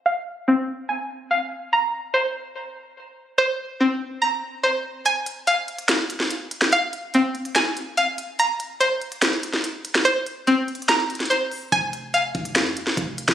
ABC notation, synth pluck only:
X:1
M:4/4
L:1/8
Q:1/4=144
K:Fm
V:1 name="Synth pluck"
[fa]2 C2 a2 f2 | b2 c6 | c2 C2 b2 c2 | a2 f6 |
f2 C2 a2 f2 | b2 c6 | c2 C2 b2 c2 | a2 f6 |]